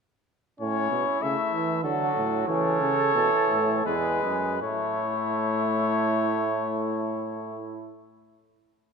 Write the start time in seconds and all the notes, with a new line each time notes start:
0.60 A2 C#4 E4 C#5
0.91 B2
1.22 C#3 A3 E5
1.53 E3
1.84 D3 F#3 F#4 A4
2.16 A2
2.48 C#3 E3 A4 C#5
2.81 C#3
3.15 B2 E3
3.50 A2
3.85 E2 G#3 G#4 B4
4.23 F#2
4.61 A2 A3 E4 C#5